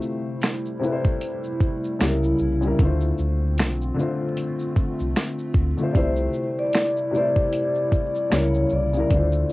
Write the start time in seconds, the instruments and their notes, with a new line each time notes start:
Already playing: upright piano C3 A3 E4 C5, ambient pad C3 G3 A3 E4
0.02 shaker
0.42 finger snap, snare, closed hi-hat, shaker
0.65 shaker
0.79 upright piano C3 A3
0.83 upright piano E4 B4, shaker
0.92 upright piano C5
1.05 kick
1.21 closed hi-hat, shaker
1.44 shaker
1.61 kick, shaker
1.84 shaker
1.99 sub bass C#2, upright piano C#3 G3, finger snap, snare, closed hi-hat, shaker
2.03 upright piano E4 A#4
2.23 shaker
2.38 sub bass C2, shaker
2.61 upright piano C#3 G3, shaker
2.65 upright piano E4 A#4
2.78 sub bass D2, upright piano D3 A3, ambient pad D3 A3 C4 F4, kick, closed hi-hat, shaker
2.83 upright piano F4 C5
3.01 shaker
3.18 sub bass D2, shaker
3.58 sub bass B1, finger snap, snare, closed hi-hat, shaker
3.81 shaker
3.94 upright piano D3 A3
3.98 upright piano F4 C5, shaker
4.37 closed hi-hat, shaker
4.59 shaker
4.76 kick, shaker
4.99 sub bass C2, shaker
5.16 finger snap, snare, closed hi-hat, shaker
5.39 shaker
5.54 sub bass D2, kick, shaker
5.77 upright piano D3 A3, shaker
5.81 upright piano F4 C5
5.91 sub bass C2, upright piano C3 A3, ambient pad C3 G3 E4, vibraphone D5, kick, closed hi-hat, shaker
5.97 upright piano E4 C5, vibraphone C5
6.16 shaker
6.34 shaker
6.59 vibraphone D5
6.73 finger snap, snare, closed hi-hat, shaker
6.97 shaker
7.11 upright piano C3 A3, shaker
7.15 upright piano E4 C5, vibraphone D5
7.36 kick
7.53 closed hi-hat, shaker
7.75 shaker
7.92 kick, shaker
8.15 shaker
8.30 sub bass C#2, upright piano C#3 G3, vibraphone C#5, finger snap, snare, closed hi-hat, shaker
8.34 upright piano E4 A#4
8.55 shaker
8.70 sub bass C2, vibraphone D5, shaker
8.93 upright piano C#3 G3, shaker
8.97 upright piano E4 A#4
9.10 sub bass D2, upright piano D3 A3, kick, closed hi-hat, shaker
9.14 upright piano F4 C5
9.32 shaker
9.50 shaker